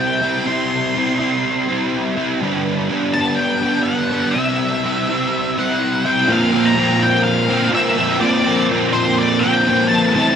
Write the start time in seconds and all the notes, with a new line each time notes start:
Already playing: C3 G3 C4 E4
0.00 G5
0.22 G3 C4 E4
0.46 C3 G3 C4 E4 C6
0.95 C3 G3 C4 E4
1.19 G3 C4 E4
1.68 G3 C4 E4
2.16 G3 C4 E4
2.41 G2 D3 G3 B3 D4
2.89 D3 G3 B3 D4
3.14 B3 D4 A5
3.18 G3
3.36 G5
3.62 G3 B3 D4
3.83 F#5
4.11 G3 B3 D4
4.31 C3 E5
4.36 G3 C4 E4
4.84 C3 G3 C4 E4
5.09 G3 C4 E4
5.57 G3 C4 E4 F#5
6.05 C4 E4 G5
6.09 G3
6.27 A#2 F3 A#3 C4
6.32 F5
6.52 F3 A#3 C4
6.65 A#5
6.76 A#2 F3 A#3 C4
7.02 G5
7.23 F5
7.48 F3 A#3 C4
7.71 A#2 F3 A#3 C4 E5
7.98 F3 A#3 C4
8.20 A#2 F3 A#3 D5
8.24 C4
8.45 F3 A#3 C4
8.70 A#2 F3 A#3 C4
8.93 C5
9.18 D5
9.40 C4 G5
9.44 F3 A#3
9.67 A#2 F3 A#3 C4
9.89 C4 A5
9.93 F3 A#3
10.14 A2 E3 A3 C4 E4 A5